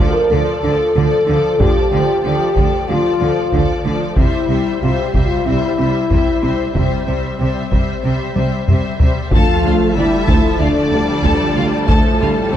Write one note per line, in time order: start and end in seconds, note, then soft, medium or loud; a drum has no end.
0.00 0.30 F3 medium
0.00 0.31 A4 medium
0.00 0.29 D5 soft
0.10 0.32 A#4 medium
0.30 0.39 D2 medium
0.30 0.40 D3 medium
0.30 0.63 F3 medium
0.30 1.60 A4 medium
0.30 0.64 A4 soft
0.30 0.61 D5 soft
0.62 0.71 D2 soft
0.62 0.72 D3 medium
0.62 0.95 F3 soft
0.62 0.95 A4 soft
0.62 0.95 D5 soft
0.95 1.03 D2 medium
0.95 1.04 D3 medium
0.95 1.26 F3 soft
0.95 1.26 A4 soft
0.95 1.27 D5 soft
1.27 1.35 D2 medium
1.27 1.35 D3 medium
1.27 1.59 F3 soft
1.27 1.59 A4 medium
1.27 1.59 D5 soft
1.59 1.67 D2 medium
1.59 1.67 D3 medium
1.59 1.89 F3 medium
1.59 2.89 G4 medium
1.59 1.91 A4 medium
1.59 1.91 D5 soft
1.59 taiko medium
1.91 2.00 D2 soft
1.91 2.00 D3 medium
1.91 2.22 F3 soft
1.91 2.23 A4 soft
1.91 2.23 D5 soft
2.24 2.32 D2 soft
2.24 2.32 D3 soft
2.24 2.54 F3 medium
2.24 2.53 A4 soft
2.24 2.56 D5 soft
2.54 2.65 D2 medium
2.54 2.64 D3 soft
2.54 2.87 F3 soft
2.54 2.86 A4 soft
2.54 2.87 D5 soft
2.54 taiko medium
2.87 2.97 D2 medium
2.87 2.96 D3 soft
2.87 3.18 F3 soft
2.87 3.85 F4 medium
2.87 3.19 A4 soft
2.87 3.20 D5 soft
3.20 3.29 D2 soft
3.20 3.28 D3 soft
3.20 3.51 F3 soft
3.20 3.51 A4 soft
3.20 3.51 D5 soft
3.52 3.61 D2 medium
3.52 3.61 D3 soft
3.52 3.83 F3 soft
3.52 3.83 A4 soft
3.52 3.84 D5 soft
3.52 taiko medium
3.84 3.93 D2 medium
3.84 3.93 D3 soft
3.84 4.16 F3 soft
3.84 4.16 A4 soft
3.84 4.17 D5 soft
4.16 4.25 C2 medium
4.16 4.25 C3 soft
4.16 4.47 G3 soft
4.16 4.77 E4 medium
4.16 4.49 C5 medium
4.16 4.48 E5 soft
4.16 taiko medium
4.48 4.57 C2 soft
4.48 4.57 C3 soft
4.48 4.80 G3 soft
4.48 4.82 C5 soft
4.48 4.80 E5 soft
4.81 4.90 C2 soft
4.81 4.90 C3 soft
4.81 5.13 G3 soft
4.81 5.03 F4 medium
4.81 5.14 C5 soft
4.81 5.13 E5 soft
5.02 5.23 G4 medium
5.14 5.23 C2 soft
5.14 5.23 C3 soft
5.14 5.45 G3 soft
5.14 5.46 C5 soft
5.14 5.46 E5 soft
5.14 taiko medium
5.25 5.46 F4 medium
5.46 5.55 C2 medium
5.46 5.54 C3 soft
5.46 5.77 G3 soft
5.46 6.74 E4 medium
5.46 5.78 C5 soft
5.46 5.78 E5 soft
5.78 5.87 C2 soft
5.78 5.86 C3 soft
5.78 6.09 G3 soft
5.78 6.10 C5 soft
5.78 6.10 E5 soft
6.10 6.19 C2 soft
6.10 6.18 C3 soft
6.10 6.42 G3 soft
6.10 6.43 C5 soft
6.10 6.42 E5 soft
6.10 taiko medium
6.43 6.52 C2 soft
6.43 6.51 C3 soft
6.43 6.74 G3 soft
6.43 6.75 C5 soft
6.43 6.74 E5 soft
6.74 6.84 C2 soft
6.74 6.83 C3 soft
6.74 7.06 G3 soft
6.74 8.95 C4 medium
6.74 7.07 C5 soft
6.74 7.06 E5 soft
6.74 taiko medium
7.07 7.17 C2 soft
7.07 7.15 C3 soft
7.07 7.38 G3 soft
7.07 7.39 C5 soft
7.07 7.38 E5 soft
7.40 7.48 C2 soft
7.40 7.48 C3 soft
7.40 7.70 G3 soft
7.40 7.71 C5 soft
7.40 7.71 E5 soft
7.71 7.81 C2 soft
7.71 7.80 C3 soft
7.71 8.02 G3 soft
7.71 8.03 C5 soft
7.71 8.02 E5 soft
7.71 taiko medium
8.03 8.13 C2 soft
8.03 8.12 C3 soft
8.03 8.34 G3 soft
8.03 8.35 C5 soft
8.03 8.35 E5 soft
8.35 8.44 C2 soft
8.35 8.44 C3 soft
8.35 8.67 G3 soft
8.35 8.67 C5 soft
8.35 8.67 E5 soft
8.35 taiko high medium
8.68 8.76 C2 soft
8.68 8.77 C3 soft
8.68 8.98 G3 soft
8.68 9.00 C5 soft
8.68 8.99 E5 soft
8.68 taiko low-mid medium
8.99 9.08 C2 soft
8.99 9.10 C3 soft
8.99 9.31 G3 soft
8.99 9.32 C5 soft
8.99 9.31 E5 soft
8.99 taiko low medium
9.31 9.40 D2 medium
9.31 9.45 D2 medium
9.31 9.41 D2 medium
9.31 12.57 F3 medium
9.31 9.93 F3 medium
9.31 12.57 A3 medium
9.31 9.92 A3 medium
9.31 9.91 F4 medium
9.31 12.57 A4 medium
9.31 9.62 A4 medium
9.31 9.91 F5 medium
9.31 12.57 A5 medium
9.31 9.63 A5 medium
9.31 taiko medium
9.31 sub drop medium
9.63 9.71 D2 soft
9.63 9.77 D2 soft
9.63 9.73 D2 soft
9.63 9.73 F4 soft
9.63 9.74 F5 soft
9.94 10.03 D2 soft
9.94 10.08 D2 soft
9.94 10.05 D2 soft
9.94 10.28 G3 medium
9.94 10.06 D4 soft
9.94 10.59 E4 medium
9.94 10.60 E5 medium
9.98 10.61 E4 medium
9.98 10.06 D5 soft
10.27 10.35 D2 medium
10.27 10.41 D2 medium
10.27 10.37 D2 medium
10.27 10.60 F3 soft
10.27 10.58 A4 medium
10.27 10.58 A5 medium
10.27 taiko medium
10.59 10.72 D2 soft
10.59 10.67 D2 soft
10.59 10.69 D2 soft
10.59 11.89 D3 medium
10.59 10.92 A3 medium
10.59 11.88 D4 medium
10.59 10.69 F4 soft
10.59 11.88 D5 medium
10.59 10.69 F5 soft
10.91 10.99 D2 soft
10.91 11.05 D2 soft
10.91 11.01 D2 soft
10.91 11.88 G3 medium
10.91 11.00 D4 soft
10.91 11.01 D5 soft
11.23 11.31 D2 medium
11.23 11.37 D2 medium
11.23 11.33 D2 medium
11.23 11.54 A4 medium
11.23 11.54 A5 medium
11.23 taiko medium
11.56 11.64 D2 soft
11.56 11.69 D2 soft
11.56 11.65 D2 medium
11.56 11.65 F4 medium
11.56 11.65 F5 medium
11.87 11.96 D2 medium
11.87 11.97 D2 medium
11.87 12.02 D2 medium
11.87 12.54 A2 medium
11.87 12.20 F3 medium
11.87 12.52 A3 medium
11.87 12.18 A4 medium
11.87 12.51 A4 medium
11.87 12.18 A5 medium
11.87 taiko medium
12.20 12.29 D2 soft
12.20 12.33 D2 soft
12.20 12.29 D2 soft
12.20 12.52 G3 medium
12.20 12.29 F4 soft
12.20 12.29 F5 soft
12.52 12.57 D2 soft
12.52 12.57 A3 medium
12.52 12.57 C4 medium
12.52 12.57 D4 soft
12.52 12.57 C5 medium
12.52 12.57 D5 soft